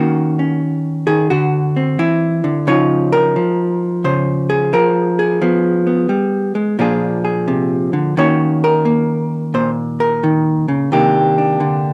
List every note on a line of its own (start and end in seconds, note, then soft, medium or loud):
0.00 1.06 D#3 medium
0.00 0.61 A#3 soft
0.00 0.38 C#4 soft
0.00 1.06 F#4 medium
0.39 1.27 C#4 soft
1.07 1.30 D#3 medium
1.07 1.29 G#4 medium
1.30 1.99 D3 medium
1.30 1.98 F#4 medium
1.76 2.65 C4 soft
1.99 2.44 E3 medium
1.99 2.67 E4 medium
2.44 2.67 D3 medium
2.67 3.35 C#3 medium
2.67 3.36 F3 soft
2.67 5.40 D#4 medium
2.67 4.49 F4 medium
2.67 3.12 C#5 loud
3.12 4.04 A#4 loud
3.36 4.72 F3 medium
4.04 4.73 C#3 medium
4.04 4.73 C5 medium
4.50 5.18 G#4 medium
4.73 5.41 F3 medium
4.73 5.42 A#4 medium
5.19 6.79 G#4 medium
5.42 6.09 F3 medium
5.42 5.86 B3 soft
5.87 6.76 B3 soft
6.09 6.55 G3 medium
6.55 6.79 G#3 medium
6.79 8.13 A#2 medium
6.79 8.17 F3 medium
6.79 8.14 D4 soft
6.79 8.14 F4 medium
6.79 7.23 G#4 medium
7.25 8.14 G#4 medium
7.48 7.93 C3 medium
7.93 8.16 D3 medium
8.17 10.22 D#3 medium
8.17 8.84 A#3 soft
8.17 10.89 C#4 soft
8.17 10.90 F#4 soft
8.17 8.63 C#5 medium
8.64 9.54 A#4 loud
8.85 10.88 A#3 medium
9.54 10.88 A#2 medium
9.54 9.70 C5 medium
10.00 10.91 A#4 medium
10.23 10.68 D#3 medium
10.68 10.91 C#3 medium
10.92 11.93 C3 medium
10.92 11.60 D#3 soft
10.92 11.93 A#3 soft
10.92 11.38 D4 soft
10.92 11.93 G4 medium
11.38 11.93 D4 soft
11.60 11.93 D3 medium